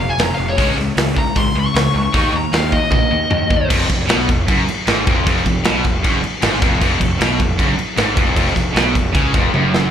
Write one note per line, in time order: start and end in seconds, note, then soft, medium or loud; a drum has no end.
0.00 0.11 F1 medium
0.00 0.17 F2 medium
0.00 0.17 C3 medium
0.09 0.20 G#5 loud
0.18 0.30 F1 medium
0.18 0.36 F2 medium
0.18 0.37 C3 medium
0.18 0.33 A#5 medium
0.18 snare loud
0.18 open hi-hat medium
0.35 0.59 F1 loud
0.35 0.56 F2 medium
0.35 0.56 C3 medium
0.35 0.46 F5 medium
0.49 0.66 C#5 loud
0.57 0.70 C#2 loud
0.57 0.76 C#3 loud
0.57 0.76 G#3 loud
0.57 0.76 C#4 medium
0.57 kick loud
0.57 open hi-hat medium
0.77 0.89 C#2 medium
0.77 0.95 C#3 medium
0.77 0.95 G#3 medium
0.77 snare soft
0.96 1.21 C#2 medium
0.96 1.15 C#3 medium
0.96 1.15 G#3 medium
0.96 snare loud
0.96 open hi-hat medium
1.16 1.34 C#3 medium
1.16 1.34 G#3 medium
1.16 1.37 A#5 loud
1.16 kick medium
1.36 1.48 G#1 loud
1.36 1.53 C#3 medium
1.36 1.54 G#3 loud
1.36 1.55 C6 loud
1.36 kick loud
1.36 open hi-hat medium
1.54 1.67 C#2 medium
1.54 1.73 C#3 medium
1.54 1.73 G#3 medium
1.59 2.33 C#6 medium
1.74 1.87 C#2 loud
1.74 1.92 C#3 medium
1.74 1.92 G#3 medium
1.74 snare loud
1.74 open hi-hat medium
1.95 2.07 C#2 loud
1.95 2.12 C#3 medium
1.95 2.12 G#3 medium
2.13 2.26 D#2 loud
2.13 2.32 D#3 medium
2.13 2.32 A#3 loud
2.13 2.32 D#4 loud
2.13 kick loud
2.13 open hi-hat medium
2.33 2.45 D#2 medium
2.33 2.51 D#3 medium
2.33 2.51 A#3 medium
2.33 2.54 A#5 loud
2.53 2.77 D#2 loud
2.53 2.71 D#3 medium
2.53 2.71 A#3 medium
2.53 2.72 F5 loud
2.53 snare loud
2.53 open hi-hat medium
2.72 2.90 D#3 medium
2.72 2.90 A#3 medium
2.72 2.90 D#5 medium
2.72 kick medium
2.91 3.04 A#1 medium
2.91 3.09 D#3 medium
2.91 3.10 A#3 medium
2.91 3.67 D#5 loud
2.91 kick loud
2.91 high tom medium
3.11 3.24 D#2 medium
3.11 3.29 D#3 medium
3.11 3.29 A#3 medium
3.30 3.43 D#2 medium
3.30 3.48 D#3 medium
3.30 3.48 A#3 medium
3.30 mid tom loud
3.50 3.62 D#2 loud
3.50 3.68 D#3 medium
3.50 3.68 A#3 medium
3.50 kick loud
3.70 3.88 F1 loud
3.70 3.89 F2 loud
3.70 kick loud
3.70 crash loud
3.70 crash medium
3.81 snare soft
3.89 4.08 F1 medium
3.89 4.05 F2 medium
3.89 kick medium
3.89 crash medium
4.08 4.27 B1 medium
4.08 4.27 B2 loud
4.08 snare loud
4.08 crash medium
4.29 4.47 F1 medium
4.29 4.45 F2 medium
4.29 kick loud
4.29 crash medium
4.48 4.66 F#1 medium
4.48 4.67 F#2 loud
4.48 kick loud
4.48 crash medium
4.68 muted picked electric bass stroke soft
4.68 muted overdriven electric guitar stroke soft
4.68 muted distorted electric guitar stroke soft
4.68 crash medium
4.87 5.05 G#1 loud
4.87 5.06 G#2 loud
4.87 snare loud
4.87 crash medium
5.07 5.25 F1 loud
5.07 5.25 F2 loud
5.07 kick loud
5.07 crash medium
5.26 5.44 F1 loud
5.26 5.45 F2 loud
5.26 kick loud
5.26 crash medium
5.37 snare soft
5.46 5.63 F1 medium
5.46 5.61 F2 medium
5.46 kick medium
5.46 crash medium
5.64 5.83 B1 medium
5.64 5.83 B2 loud
5.64 snare loud
5.64 crash medium
5.84 6.02 F1 medium
5.84 6.01 F2 medium
5.84 kick medium
5.84 crash medium
6.03 6.22 F#1 medium
6.03 6.22 F#2 loud
6.03 kick loud
6.03 crash medium
6.22 muted distorted electric guitar stroke medium
6.22 muted picked electric bass stroke soft
6.22 muted overdriven electric guitar stroke medium
6.22 crash medium
6.42 6.61 G#1 medium
6.42 6.61 G#2 loud
6.42 snare loud
6.42 crash loud
6.62 6.80 F1 loud
6.62 6.80 F2 loud
6.62 kick loud
6.62 crash medium
6.81 6.99 F1 loud
6.81 7.00 F2 loud
6.81 kick loud
6.81 crash medium
7.00 7.18 F1 medium
7.00 7.17 F2 medium
7.00 kick medium
7.00 crash medium
7.21 7.38 B1 medium
7.21 7.39 B2 loud
7.21 snare loud
7.21 crash medium
7.39 7.57 F1 medium
7.39 7.55 F2 medium
7.39 kick loud
7.39 crash medium
7.59 7.77 F#1 medium
7.59 7.78 F#2 loud
7.59 kick medium
7.59 crash medium
7.76 muted distorted electric guitar stroke medium
7.76 muted picked electric bass stroke soft
7.76 muted overdriven electric guitar stroke medium
7.76 crash medium
7.97 8.15 G#1 loud
7.97 8.17 G#2 loud
7.97 snare loud
7.97 crash medium
8.17 8.35 F1 loud
8.17 8.36 F2 medium
8.17 kick loud
8.17 crash medium
8.36 8.55 F1 loud
8.36 8.55 F2 loud
8.36 kick loud
8.36 crash medium
8.48 snare soft
8.55 8.74 F1 medium
8.55 8.72 F2 medium
8.55 kick medium
8.55 snare soft
8.55 crash medium
8.75 8.93 B1 medium
8.75 8.95 B2 loud
8.75 snare loud
8.75 crash medium
8.95 9.13 F1 medium
8.95 9.11 F2 medium
8.95 kick loud
8.95 crash medium
9.14 9.32 C#2 medium
9.14 9.34 C#3 loud
9.14 kick loud
9.14 crash medium
9.34 9.52 F1 medium
9.34 9.53 F2 loud
9.34 kick loud
9.34 crash medium
9.53 9.89 F#1 medium
9.53 9.91 F#2 loud
9.53 high tom medium
9.74 snare loud